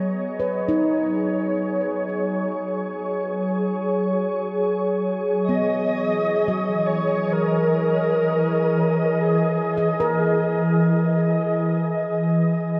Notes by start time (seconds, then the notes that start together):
Already playing: F#3 B3 G#4 C#5 D#5
0.40 B4
0.68 D#4
5.43 E3 D#5
5.49 B3
6.38 D#5
6.48 F#3
6.86 C#5
7.32 A#4
9.22 G#4
9.77 D#5
10.00 A#4